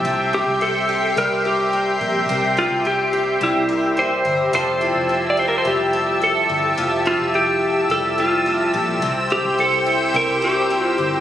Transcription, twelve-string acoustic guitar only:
X:1
M:4/4
L:1/8
Q:1/4=107
K:F
V:1 name="Twelve-string acoustic guitar"
C, G C G G, B C B | [C,B] G C G G, B C B | [F,A] E C E G, A C A | [F,A] E C2 G, A C A |
C, E C E G, B C B |]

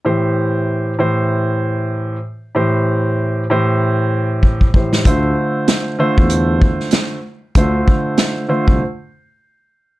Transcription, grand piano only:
X:1
M:4/4
L:1/8
Q:"Swing 16ths" 1/4=96
K:Am
V:1 name="Grand piano"
[A,,E,Gc]3 [A,,E,Gc]4 z | [A,,E,Gc]3 [A,,E,Gc]4 [A,,E,Gc] | [D,A,Fc]3 [D,A,Fc]4 z | [D,A,Fc]3 [D,A,Fc] z4 |]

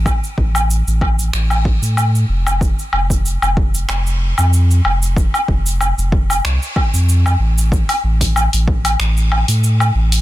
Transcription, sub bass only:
X:1
M:4/4
L:1/16
Q:"Swing 16ths" 1/4=94
K:Flyd
V:1 name="Sub bass" clef=bass
A,,, z A,,,3 A,,,3 A,,,3 A,,3 F,,,2- | F,,, z F,,,3 F,,,3 F,,,3 F,,3 F,,,2- | F,,, z F,,,3 F,,,3 C,, z2 F,,3 A,,,2- | A,,, z A,,,3 A,,,3 A,,,3 A,,3 A,,,2 |]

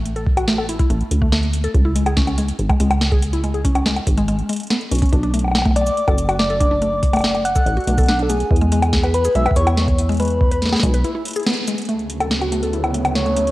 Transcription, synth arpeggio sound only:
X:1
M:4/4
L:1/16
Q:1/4=142
K:Dlyd
V:1 name="Synth arpeggio sound"
z A z F A, A E E A, z2 A, A, z2 A | z E G, G C C G, z2 G, G, z2 G z E | G, G C C G, z2 G, G, z G, z B, z C C | D D A, z2 A, A, z2 A z F A, A D D |
A, z2 A, A, z2 A z F A, A D D A, z | z G, G, z2 B z G G, B E E G, z2 G, | G, z2 B z G G, B E E z G B, z G, z | A, z2 A z F A, A E E A, z2 A, A, z |]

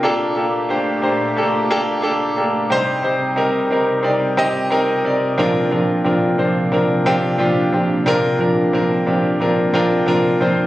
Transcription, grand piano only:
X:1
M:4/4
L:1/8
Q:1/4=90
K:Gm
V:1 name="Grand piano"
[B,DGA] [B,DGA] [B,DGc] [B,DGc] [B,DGA] [B,DGA] [B,DGA] [B,DGA] | [CEGc] [CEGc] [CEGB] [CEGB] [CEGd] [CEGe] [CEGB] [CEGd] | [CDFB] [CDFB] [CDFB] [CDFc] [CDFB] [CDFG] [CDFG] [CDFG] | [CDFB] [CDFB] [CDFB] [CDFG] [CDFB] [CDFB] [CDFB] [CDFc] |]
V:2 name="Grand piano" clef=bass
B,,3 z4 z | [C,G,]3 z4 z | [B,,F,]3 z4 z | [B,,F,]3 z4 z |]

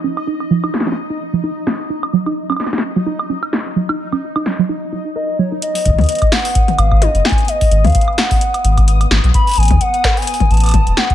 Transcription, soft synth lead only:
X:1
M:4/4
L:1/16
Q:"Swing 16ths" 1/4=129
K:G#dor
V:1 name="Soft synth lead"
z16 | z16 | z12 d2 c2 | d4 d2 f4 e2 d2 g2 |
d3 e3 f8 z2 | b2 g2 f3 g3 =a4 f2 |]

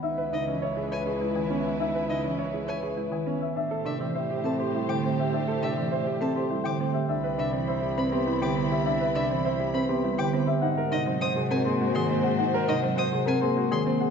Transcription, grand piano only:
X:1
M:3/4
L:1/16
Q:1/4=102
K:C#dor
V:1 name="Grand piano"
D B D C c G c G E z C z | D B D C c G c G E z C z | =D =A D =C =c =G c G E z C G | =D =A D =C =c =G c G E z C G |
=D B D =C =c =G c G E G C G | =D B D =C =c =G c G E G C G | D A D ^B, ^B G B G F G B, G | D A D ^B, ^B G B G F G B, G |]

